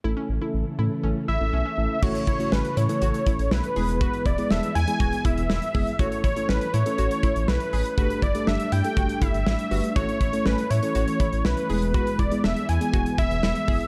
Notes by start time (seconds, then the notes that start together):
0.04 A1 C#3 E3 A3 C#4 E4 A4
0.17 C#4
0.29 A1
0.41 A3 C#4 E4 A4
0.54 A1
0.79 A2 A3 C#4 E4 A4
1.03 A1 A3 C#4 E4 A4
1.28 A1 E4 E5
1.41 A1 A3 C#4 E4 A4
1.53 B1 C#4
1.66 C#4
1.78 A1 E3 A3 C#4 E4 A4
2.03 A1 C#3 E3 A3 C#4 E4 F#4 A4 C#5, kick, crash
2.15 closed hi-hat
2.27 A1 E4 C#5, kick, closed hi-hat
2.40 A3 C#4 E4 F#4, closed hi-hat
2.52 A1 C#4 B4, snare
2.65 closed hi-hat
2.77 A2 E4 C#5, closed hi-hat
2.89 A3 C#4 E4 A4, closed hi-hat
3.02 A1 F#4, closed hi-hat
3.14 closed hi-hat
3.26 A1 E4, kick, closed hi-hat
3.39 A1, closed hi-hat
3.51 B1 E4 B4, snare
3.64 closed hi-hat
3.76 E1 G#3 B3 E4 G#4, open hi-hat
3.89 closed hi-hat
4.01 F#4 B4, kick, closed hi-hat
4.13 closed hi-hat
4.26 E1 E4 D5, kick, closed hi-hat
4.38 G#3 B3 E4 G#4, closed hi-hat
4.51 E1 D4 E5, snare
4.63 closed hi-hat
4.75 E2 E4 G#5, closed hi-hat
4.88 G#3 B3 E4 G#4, closed hi-hat
5.00 E1 F#4, kick, closed hi-hat
5.13 closed hi-hat
5.25 E1 E4 E5, kick, closed hi-hat
5.37 E1, closed hi-hat
5.50 E1 E4, snare
5.62 closed hi-hat
5.74 F#1 G#3 B3 E4 G#4, kick, open hi-hat
5.87 closed hi-hat
5.99 A1 A3 C#4 E4 F#4 A4 C#5, kick, closed hi-hat
6.12 closed hi-hat
6.24 A1 E4 C#5, kick, closed hi-hat
6.36 A3 C#4 E4 A4, closed hi-hat
6.49 A1 C#4 B4, snare
6.61 closed hi-hat
6.74 A2 E4 C#5, closed hi-hat
6.86 A3 C#4 E4 A4, closed hi-hat
6.98 A1 F#4, closed hi-hat
7.11 closed hi-hat
7.23 A1 E4, kick, closed hi-hat
7.36 A1, closed hi-hat
7.48 B1 E4 B4, snare
7.60 closed hi-hat
7.73 A1 G#4, open hi-hat
7.85 closed hi-hat
7.98 G1 G3 A3 D4 F#4 G4 A4 B4, kick, closed hi-hat
8.10 closed hi-hat
8.22 G1 E4 D5, kick, closed hi-hat
8.35 A3 D4 G4 A4, closed hi-hat
8.47 G1 D4 E5, snare
8.60 closed hi-hat
8.72 G2 E4 G5, closed hi-hat
8.84 A3 D4 G4 A4, closed hi-hat
8.97 G1 F#4, kick, closed hi-hat
9.09 closed hi-hat
9.22 G1 E4 E5, kick, closed hi-hat
9.34 G1, closed hi-hat
9.46 A1 E4, snare
9.59 closed hi-hat
9.71 G1 A3 D4 F#4 G4 B4, open hi-hat
9.84 closed hi-hat
9.96 A1 E3 A3 C#4 E4 F#4 A4 C#5, kick, closed hi-hat
10.09 closed hi-hat
10.21 A1 E4 C#5, kick, closed hi-hat
10.33 A3 C#4 E4 A4, closed hi-hat
10.46 A1 C#4 B4, snare
10.58 closed hi-hat
10.70 A2 E4 C#5, closed hi-hat
10.83 A3 C#4 E4 A4, closed hi-hat
10.95 A1 F#4, closed hi-hat
11.08 closed hi-hat
11.20 A1 E4, kick, closed hi-hat
11.33 A1, closed hi-hat
11.45 B1 E4 B4, snare
11.57 closed hi-hat
11.70 E1 G#3 B3 E4 G#4, open hi-hat
11.82 closed hi-hat
11.94 F#4 B4, kick, closed hi-hat
12.07 closed hi-hat
12.19 E1 E4 D5, kick, closed hi-hat
12.32 G#3 B3 E4 G#4, closed hi-hat
12.44 E1 D4 E5, snare
12.56 closed hi-hat
12.69 E2 E4 G#5, closed hi-hat
12.81 G#3 B3 E4 G#4, closed hi-hat
12.93 E1 F#4, kick, closed hi-hat
13.06 closed hi-hat
13.18 E1 E4 E5, kick, closed hi-hat
13.31 E1, closed hi-hat
13.43 E1 E4, snare
13.55 closed hi-hat
13.68 F#1 G#3 B3 E4 G#4, kick, open hi-hat
13.81 closed hi-hat